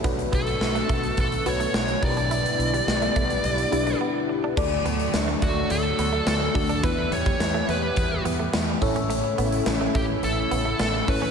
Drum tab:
CC |----------------|----------------|x---------------|----------------|
HH |xxxx-xxxxxxx-xox|xxxx-xxxxxxx----|--xxx-x-x-x-x-ox|x-xxx-x-x-x-x-ox|
TB |----------------|----x-----------|----x-------x---|----x-------x---|
SD |----o-------o---|----o-----------|----o-------o---|----o-------o---|
BD |o-o---o-o-----o-|------o---------|o-----o-------o-|o--o----o-----o-|

CC |----------------|
HH |x-xxx-x-x-x-x-o-|
TB |----x-------x---|
SD |----o-------o---|
BD |------o-------o-|